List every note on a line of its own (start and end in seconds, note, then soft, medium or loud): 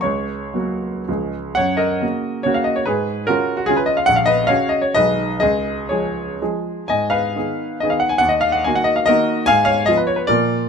0.01 0.54 C#2 soft
0.01 1.29 C#5 medium
0.01 1.33 C#6 medium
0.54 1.03 F#3 soft
0.54 1.03 A#3 soft
0.54 1.04 F#4 soft
1.08 1.56 C#2 soft
1.08 1.54 F3 soft
1.08 1.54 G#3 soft
1.08 1.54 G#4 soft
1.55 2.01 F#2 medium
1.55 1.78 C#5 medium
1.55 1.78 F#5 medium
1.77 2.42 A#4 medium
1.77 2.45 D#5 medium
2.01 2.42 C#3 soft
2.01 2.42 A#3 soft
2.01 2.42 F#4 soft
2.43 2.82 C#3 soft
2.43 2.82 A#3 soft
2.43 2.83 F#4 medium
2.43 2.55 C#5 medium
2.54 2.66 F5 medium
2.64 2.75 D#5 medium
2.76 2.86 C#5 medium
2.86 3.26 G#2 medium
2.86 3.24 G#4 medium
2.86 3.26 B4 medium
3.27 3.65 C#3 soft
3.27 3.65 C#4 soft
3.27 3.65 F4 medium
3.27 3.55 F#4 medium
3.27 3.58 A#4 medium
3.57 3.67 F#4 medium
3.66 4.04 C#3 medium
3.66 4.03 C#4 medium
3.66 4.04 F4 medium
3.66 3.77 G#4 medium
3.77 3.87 B4 medium
3.86 3.96 D#5 medium
3.97 4.06 F5 medium
4.06 4.48 A#1 medium
4.06 4.16 F#5 loud
4.16 4.26 F5 medium
4.26 4.47 B4 medium
4.26 4.48 D#5 medium
4.47 4.91 C#3 soft
4.47 4.91 C#4 soft
4.47 4.91 F#4 soft
4.47 4.70 C#5 medium
4.47 4.71 F5 medium
4.69 4.82 D#5 medium
4.82 4.94 C#5 medium
4.94 5.40 B1 medium
4.94 5.37 D#3 soft
4.94 5.37 G#3 soft
4.94 5.38 G#4 soft
4.94 5.37 B4 medium
4.94 5.38 D#5 loud
5.40 5.89 C#2 medium
5.40 5.86 G#4 medium
5.40 5.89 D#5 medium
5.89 6.38 F3 soft
5.89 6.38 G#3 soft
5.89 6.38 G#4 soft
5.89 6.40 C#5 medium
6.42 6.86 F3 soft
6.42 6.85 G#3 soft
6.42 6.86 G#4 soft
6.88 7.35 G#2 soft
6.88 7.11 D#5 medium
6.88 7.11 G#5 medium
7.10 7.77 B4 medium
7.10 7.80 F5 medium
7.36 7.78 D#3 soft
7.36 7.78 B3 soft
7.36 7.78 G#4 soft
7.80 8.19 D#3 soft
7.80 8.20 B3 soft
7.80 8.20 G#4 soft
7.80 7.91 D#5 medium
7.90 8.01 F5 medium
8.00 8.11 F#5 medium
8.09 8.21 G#5 medium
8.18 8.63 D#2 medium
8.18 8.31 F#5 medium
8.29 8.41 D#5 medium
8.41 8.53 F5 medium
8.52 8.64 F#5 medium
8.64 9.06 D#3 soft
8.64 9.06 A#3 soft
8.64 9.06 F#4 medium
8.64 8.76 G#5 medium
8.75 8.87 F#5 medium
8.84 8.97 D#5 medium
8.96 9.08 F5 medium
9.06 9.45 D#3 medium
9.06 9.44 A#3 medium
9.06 9.45 F#4 medium
9.06 9.45 A#4 medium
9.06 9.47 D#5 loud
9.46 9.88 G#2 medium
9.46 9.63 F5 medium
9.46 9.67 G#5 loud
9.65 9.86 C#5 medium
9.65 9.87 F5 medium
9.86 10.27 F3 soft
9.86 10.27 B3 soft
9.86 10.27 F4 soft
9.86 9.98 D#5 medium
9.97 10.09 B4 medium
10.07 10.19 C#5 medium
10.16 10.29 B4 medium
10.27 10.69 A#2 medium
10.27 10.69 F3 soft
10.27 10.69 A#3 soft
10.27 10.69 F4 soft
10.27 10.69 A#4 medium
10.27 10.69 D5 medium